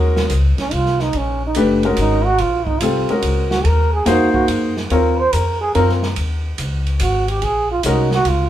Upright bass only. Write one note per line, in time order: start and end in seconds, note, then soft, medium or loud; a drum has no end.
0.00 0.29 D#2 medium
0.30 0.56 C#2 medium
0.59 muted upright bass stroke soft
0.72 1.13 C2 medium
1.14 1.55 A#1 medium
1.56 1.96 F#1 medium
1.97 2.38 G#1 medium
2.39 2.80 A#1 medium
2.81 3.07 C2 medium
3.10 muted upright bass stroke soft
3.23 3.64 C#2 medium
3.64 4.05 D#2 medium
4.06 4.47 F2 medium
4.48 4.89 F#2 medium
4.91 5.32 D#2 medium
5.33 5.74 F2 medium
5.75 6.16 F#2 medium
6.16 6.57 D#2 medium
6.59 6.99 C#2 medium
7.01 7.41 G#1 medium
7.42 7.83 A#1 medium
7.84 8.24 C2 medium
8.25 8.49 C#2 medium